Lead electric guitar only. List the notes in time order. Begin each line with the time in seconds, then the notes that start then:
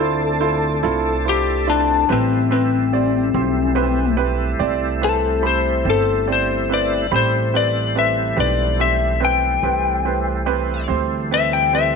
Already playing: A4
1.29 G4
1.70 D4
2.12 C4
2.52 C4
5.04 A4
5.47 C5
5.90 A4
6.32 C5
6.74 D5
7.16 C5
7.57 D5
7.99 E5
8.40 D5
8.81 E5
9.25 G5
11.34 E5
11.53 G5
11.75 E5